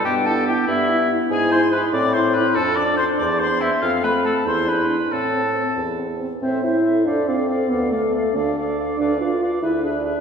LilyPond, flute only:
\new Staff \with { instrumentName = "Flute" } { \time 6/8 \key e \minor \tempo 4. = 95 g''8 a''8 g''8 e''4 r8 | \key a \minor gis''8 c'''8 b''8 d'''8 c'''8 b''8 | a''8 d'''8 c'''8 d'''8 c'''8 e''8 | f''8 b''8 a''8 c'''8 b''4 |
a''4. r4. | e''8 e''8 e''8 f''8 f''8 f''8 | f''8 f''8 f''8 f''8 f''8 f''8 | f''8 f''8 f''8 e''8 e''8 e''8 | }